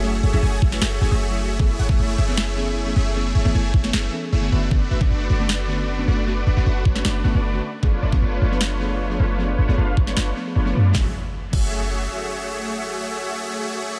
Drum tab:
CC |----------------|----------------|----------------|----------------|
SD |-------oo-------|--------o-------|-------oo-------|--------o-------|
BD |------o---------|o--o------------|------o---------|o--o------------|

CC |----------------|----------------|----------------|------x---------|
SD |-------oo-------|--------o-------|-------oo-------|o---------------|
BD |------o---------|o--o------------|------o---------|o-----o---------|

CC |----------------|
SD |----------------|
BD |----------------|